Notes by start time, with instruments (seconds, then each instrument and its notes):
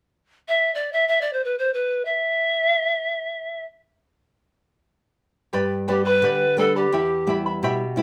0.48 pan flute E5
0.75 pan flute D5
0.93 pan flute E5
1.08 pan flute E5
1.21 pan flute D5
1.33 pan flute C5
1.45 pan flute B4
1.59 pan flute C5
1.74 pan flute B4
2.05 pan flute E5
5.53 nylon-string guitar G2, charango G4 B4 D5 G5 B5
5.88 nylon-string guitar G3 B3 D4, pan flute G4, charango B4 D5 G5 B5
6.04 pan flute B4, charango B4 D5 B5
6.22 nylon-string guitar D3, charango G4 B4 D5 G5 B5
6.57 nylon-string guitar G3 B3 D4, pan flute A4, charango B4 D5 G5 B5
6.76 pan flute G4, charango B4 D5 B5
6.92 nylon-string guitar E2, charango E4 G4 E5 G5 B5
7.27 nylon-string guitar G3 B3 E4, charango E4 E5 G5 B5
7.46 charango E4 E5 B5
7.63 nylon-string guitar B2, charango E4 G4 E5 G5 B5
7.96 nylon-string guitar G3 B3 E4, charango E4 E5 G5 B5